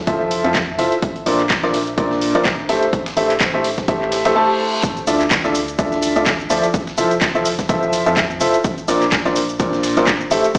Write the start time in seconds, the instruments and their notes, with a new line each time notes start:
Already playing: ambient pad A4 E5 A5
0.07 fm bass F1, upright piano F3 E4 F4 A4 C5 E5, kick, closed hi-hat
0.31 closed hi-hat, open hi-hat
0.44 fm bass F2, upright piano F3 E4 F4 A4 C5 E5, closed hi-hat
0.55 kick, snare, clap, closed hi-hat
0.79 fm bass F1, upright piano E4 F4 A4 C5 E5, closed hi-hat, open hi-hat
0.92 closed hi-hat
1.02 ambient pad D4, kick, closed hi-hat
1.16 closed hi-hat
1.26 fm bass A#1, upright piano A#2 D4 F4 A#4 C5 D5, closed hi-hat, open hi-hat
1.40 ambient pad C5, clap, closed hi-hat
1.50 kick, snare, clap, closed hi-hat
1.63 fm bass A#1, upright piano A#2 D4 F4 A#4 C5 D5, snare
1.74 closed hi-hat, open hi-hat
1.87 closed hi-hat
1.98 fm bass A#1, upright piano A#2 D4 F4 A#4 C5 D5, kick, closed hi-hat
2.11 snare
2.21 closed hi-hat, open hi-hat
2.35 fm bass A#1, upright piano A#2 D4 F4 A#4 C5 D5, closed hi-hat
2.45 kick, snare, clap, closed hi-hat
2.69 fm bass A1, upright piano A3 E4 G4 A4 C5 E5, ambient pad G4, snare, closed hi-hat, open hi-hat
2.83 closed hi-hat
2.93 kick, closed hi-hat
3.06 snare, closed hi-hat
3.17 fm bass A1, upright piano A3 E4 G4 A4 C5 E5, open hi-hat
3.30 clap, closed hi-hat
3.40 kick, snare, clap, closed hi-hat
3.54 fm bass A1, upright piano A3 E4 G4 A4 C5 E5
3.64 closed hi-hat, open hi-hat
3.78 kick, snare, closed hi-hat
3.88 fm bass A1, upright piano A3 E4 G4 A4 C5 E5, kick, closed hi-hat, reverse cymbal
4.02 clap
4.12 snare, closed hi-hat, open hi-hat
4.25 fm bass A1, upright piano A3 E4 G4 A4 C5 E5, snare, closed hi-hat
4.36 upright piano A3 E4 G4 A4 C5 A5
4.83 kick, closed hi-hat, sub drop, cabasa
4.97 closed hi-hat, cabasa
5.07 fm bass D2, upright piano D3 E4 F4 A4 D5 E5, closed hi-hat, open hi-hat, cabasa
5.21 clap, closed hi-hat, cabasa
5.31 kick, snare, clap, closed hi-hat, cabasa
5.44 fm bass D2, upright piano D3 E4 F4 A4 D5 E5, snare, cabasa
5.55 closed hi-hat, open hi-hat, cabasa
5.68 closed hi-hat, cabasa
5.78 fm bass D2, upright piano D3 E4 F4 A4 D5 E5, kick, closed hi-hat, cabasa
5.92 snare, cabasa
6.03 closed hi-hat, open hi-hat, cabasa
6.16 fm bass D2, upright piano D3 E4 F4 A4 D5 E5, closed hi-hat, cabasa
6.26 kick, snare, clap, closed hi-hat, cabasa
6.40 cabasa
6.50 fm bass D2, upright piano F3 E4 F4 A4 D5 E5, closed hi-hat, open hi-hat, cabasa
6.64 closed hi-hat, cabasa
6.74 kick, closed hi-hat, cabasa
6.87 snare, cabasa
6.98 fm bass F1, upright piano F3 E4 F4 A4 C5 E5, closed hi-hat, open hi-hat, cabasa
7.11 closed hi-hat, cabasa
7.21 kick, snare, clap, closed hi-hat, cabasa
7.35 fm bass F1, upright piano F3 E4 F4 A4 C5 E5, cabasa
7.45 closed hi-hat, open hi-hat, cabasa
7.59 kick, snare, closed hi-hat, cabasa
7.69 fm bass F1, upright piano F3 E4 F4 A4 C5 E5, kick, closed hi-hat, cabasa
7.83 cabasa
7.93 closed hi-hat, open hi-hat, cabasa
8.06 fm bass F2, upright piano F3 E4 F4 A4 C5 E5, closed hi-hat, cabasa
8.17 kick, snare, clap, closed hi-hat, cabasa
8.30 cabasa
8.40 fm bass F1, upright piano E4 F4 A4 C5 E5, closed hi-hat, open hi-hat, cabasa
8.54 closed hi-hat, cabasa
8.64 kick, closed hi-hat, cabasa
8.78 closed hi-hat, cabasa
8.88 fm bass A#1, upright piano A#2 D4 F4 A#4 C5 D5, closed hi-hat, open hi-hat, cabasa
9.02 clap, closed hi-hat, cabasa
9.12 kick, snare, clap, closed hi-hat, cabasa
9.25 fm bass A#1, upright piano A#2 D4 F4 A#4 C5 D5, snare, cabasa
9.36 closed hi-hat, open hi-hat, cabasa
9.49 closed hi-hat, cabasa
9.60 fm bass A#1, upright piano A#2 D4 F4 A#4 C5 D5, kick, closed hi-hat, cabasa
9.73 snare, cabasa
9.83 snare, closed hi-hat, open hi-hat, cabasa
9.97 fm bass A#1, upright piano A#2 D4 F4 A#4 C5 D5, snare, closed hi-hat, cabasa
10.07 kick, clap, closed hi-hat, cabasa
10.21 cabasa
10.31 fm bass A1, upright piano A3 E4 G4 A4 C5 E5, closed hi-hat, open hi-hat, cabasa
10.44 closed hi-hat, cabasa
10.55 kick, closed hi-hat, cabasa